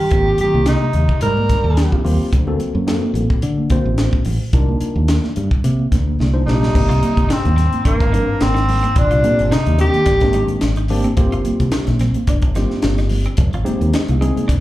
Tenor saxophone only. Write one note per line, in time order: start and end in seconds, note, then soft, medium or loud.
0.00 0.40 G4 medium
0.41 0.66 G4 medium
0.68 1.19 D#4 medium
1.22 2.01 A#4 medium
6.46 7.33 D#4 medium
7.32 7.86 C4 medium
7.87 8.44 A#3 medium
8.42 9.00 C4 medium
8.98 9.54 D4 medium
9.52 9.80 D#4 medium
9.81 10.59 G4 loud